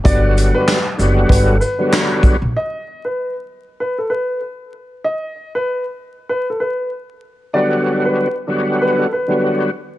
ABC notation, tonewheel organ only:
X:1
M:4/4
L:1/16
Q:"Swing 16ths" 1/4=96
K:G
V:1 name="Tonewheel organ" clef=bass
[D,F,G,B,F]4- [D,F,G,B,F] z [D,F,G,B,F]4 z [D,F,G,B,F]4 z | z16 | z16 | [D,F,G,B,F]4- [D,F,G,B,F] z [D,F,G,B,F]4 z [D,F,G,B,F]3 z2 |]